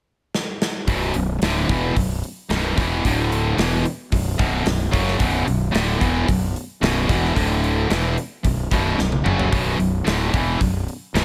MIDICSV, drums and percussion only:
0, 0, Header, 1, 2, 480
1, 0, Start_track
1, 0, Tempo, 540541
1, 776, Time_signature, 4, 2, 24, 8
1, 9988, End_track
2, 0, Start_track
2, 0, Title_t, "Drums"
2, 306, Note_on_c, 9, 38, 69
2, 395, Note_off_c, 9, 38, 0
2, 548, Note_on_c, 9, 38, 93
2, 637, Note_off_c, 9, 38, 0
2, 778, Note_on_c, 9, 46, 69
2, 779, Note_on_c, 9, 36, 96
2, 866, Note_off_c, 9, 46, 0
2, 867, Note_off_c, 9, 36, 0
2, 1011, Note_on_c, 9, 46, 60
2, 1100, Note_off_c, 9, 46, 0
2, 1258, Note_on_c, 9, 46, 85
2, 1267, Note_on_c, 9, 38, 105
2, 1347, Note_off_c, 9, 46, 0
2, 1356, Note_off_c, 9, 38, 0
2, 1504, Note_on_c, 9, 36, 100
2, 1505, Note_on_c, 9, 46, 61
2, 1593, Note_off_c, 9, 36, 0
2, 1594, Note_off_c, 9, 46, 0
2, 1745, Note_on_c, 9, 36, 91
2, 1746, Note_on_c, 9, 46, 78
2, 1834, Note_off_c, 9, 36, 0
2, 1835, Note_off_c, 9, 46, 0
2, 1985, Note_on_c, 9, 46, 62
2, 2074, Note_off_c, 9, 46, 0
2, 2221, Note_on_c, 9, 46, 72
2, 2230, Note_on_c, 9, 38, 105
2, 2310, Note_off_c, 9, 46, 0
2, 2318, Note_off_c, 9, 38, 0
2, 2465, Note_on_c, 9, 36, 110
2, 2467, Note_on_c, 9, 46, 61
2, 2476, Note_on_c, 9, 38, 35
2, 2554, Note_off_c, 9, 36, 0
2, 2556, Note_off_c, 9, 46, 0
2, 2565, Note_off_c, 9, 38, 0
2, 2707, Note_on_c, 9, 36, 92
2, 2710, Note_on_c, 9, 46, 69
2, 2796, Note_off_c, 9, 36, 0
2, 2799, Note_off_c, 9, 46, 0
2, 2949, Note_on_c, 9, 46, 57
2, 3038, Note_off_c, 9, 46, 0
2, 3182, Note_on_c, 9, 46, 78
2, 3190, Note_on_c, 9, 38, 113
2, 3270, Note_off_c, 9, 46, 0
2, 3279, Note_off_c, 9, 38, 0
2, 3421, Note_on_c, 9, 46, 52
2, 3510, Note_off_c, 9, 46, 0
2, 3658, Note_on_c, 9, 46, 75
2, 3662, Note_on_c, 9, 36, 88
2, 3747, Note_off_c, 9, 46, 0
2, 3750, Note_off_c, 9, 36, 0
2, 3902, Note_on_c, 9, 36, 106
2, 3905, Note_on_c, 9, 46, 50
2, 3990, Note_off_c, 9, 36, 0
2, 3994, Note_off_c, 9, 46, 0
2, 4136, Note_on_c, 9, 46, 71
2, 4145, Note_on_c, 9, 38, 111
2, 4225, Note_off_c, 9, 46, 0
2, 4234, Note_off_c, 9, 38, 0
2, 4382, Note_on_c, 9, 36, 114
2, 4390, Note_on_c, 9, 46, 58
2, 4471, Note_off_c, 9, 36, 0
2, 4479, Note_off_c, 9, 46, 0
2, 4508, Note_on_c, 9, 38, 35
2, 4597, Note_off_c, 9, 38, 0
2, 4614, Note_on_c, 9, 46, 68
2, 4618, Note_on_c, 9, 36, 97
2, 4703, Note_off_c, 9, 46, 0
2, 4707, Note_off_c, 9, 36, 0
2, 4863, Note_on_c, 9, 46, 60
2, 4952, Note_off_c, 9, 46, 0
2, 5102, Note_on_c, 9, 46, 75
2, 5111, Note_on_c, 9, 38, 122
2, 5191, Note_off_c, 9, 46, 0
2, 5200, Note_off_c, 9, 38, 0
2, 5339, Note_on_c, 9, 36, 106
2, 5345, Note_on_c, 9, 46, 56
2, 5428, Note_off_c, 9, 36, 0
2, 5433, Note_off_c, 9, 46, 0
2, 5581, Note_on_c, 9, 36, 94
2, 5588, Note_on_c, 9, 46, 84
2, 5670, Note_off_c, 9, 36, 0
2, 5677, Note_off_c, 9, 46, 0
2, 5827, Note_on_c, 9, 46, 61
2, 5915, Note_off_c, 9, 46, 0
2, 6064, Note_on_c, 9, 46, 80
2, 6073, Note_on_c, 9, 38, 109
2, 6153, Note_off_c, 9, 46, 0
2, 6162, Note_off_c, 9, 38, 0
2, 6299, Note_on_c, 9, 36, 107
2, 6305, Note_on_c, 9, 46, 60
2, 6314, Note_on_c, 9, 38, 34
2, 6388, Note_off_c, 9, 36, 0
2, 6394, Note_off_c, 9, 46, 0
2, 6402, Note_off_c, 9, 38, 0
2, 6438, Note_on_c, 9, 38, 33
2, 6527, Note_off_c, 9, 38, 0
2, 6539, Note_on_c, 9, 36, 90
2, 6548, Note_on_c, 9, 46, 80
2, 6628, Note_off_c, 9, 36, 0
2, 6636, Note_off_c, 9, 46, 0
2, 6783, Note_on_c, 9, 46, 56
2, 6872, Note_off_c, 9, 46, 0
2, 7019, Note_on_c, 9, 46, 74
2, 7028, Note_on_c, 9, 38, 122
2, 7108, Note_off_c, 9, 46, 0
2, 7117, Note_off_c, 9, 38, 0
2, 7261, Note_on_c, 9, 46, 56
2, 7350, Note_off_c, 9, 46, 0
2, 7499, Note_on_c, 9, 36, 92
2, 7501, Note_on_c, 9, 46, 77
2, 7588, Note_off_c, 9, 36, 0
2, 7590, Note_off_c, 9, 46, 0
2, 7738, Note_on_c, 9, 36, 101
2, 7741, Note_on_c, 9, 46, 55
2, 7827, Note_off_c, 9, 36, 0
2, 7829, Note_off_c, 9, 46, 0
2, 7981, Note_on_c, 9, 38, 59
2, 8070, Note_off_c, 9, 38, 0
2, 8100, Note_on_c, 9, 48, 70
2, 8189, Note_off_c, 9, 48, 0
2, 8222, Note_on_c, 9, 45, 92
2, 8311, Note_off_c, 9, 45, 0
2, 8342, Note_on_c, 9, 43, 89
2, 8431, Note_off_c, 9, 43, 0
2, 8459, Note_on_c, 9, 36, 106
2, 8461, Note_on_c, 9, 46, 72
2, 8548, Note_off_c, 9, 36, 0
2, 8549, Note_off_c, 9, 46, 0
2, 8702, Note_on_c, 9, 46, 57
2, 8790, Note_off_c, 9, 46, 0
2, 8940, Note_on_c, 9, 46, 77
2, 8949, Note_on_c, 9, 38, 107
2, 9029, Note_off_c, 9, 46, 0
2, 9038, Note_off_c, 9, 38, 0
2, 9180, Note_on_c, 9, 36, 104
2, 9184, Note_on_c, 9, 46, 53
2, 9269, Note_off_c, 9, 36, 0
2, 9273, Note_off_c, 9, 46, 0
2, 9421, Note_on_c, 9, 36, 95
2, 9429, Note_on_c, 9, 46, 70
2, 9509, Note_off_c, 9, 36, 0
2, 9518, Note_off_c, 9, 46, 0
2, 9664, Note_on_c, 9, 46, 59
2, 9753, Note_off_c, 9, 46, 0
2, 9905, Note_on_c, 9, 46, 83
2, 9914, Note_on_c, 9, 38, 100
2, 9988, Note_off_c, 9, 38, 0
2, 9988, Note_off_c, 9, 46, 0
2, 9988, End_track
0, 0, End_of_file